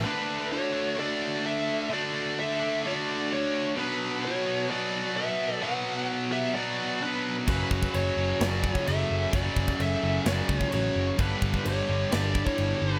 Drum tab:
CC |----------------|----------------|----------------|----------------|
SD |----------------|----------------|----------------|----------------|
BD |----------------|----------------|----------------|----------------|

CC |x---x---x---x---|x---x---x---x---|x---x---x---x---|
SD |--------o-------|--------o-------|--------o-------|
BD |o-oo------oo----|o-oo------oo----|o-oo------oo----|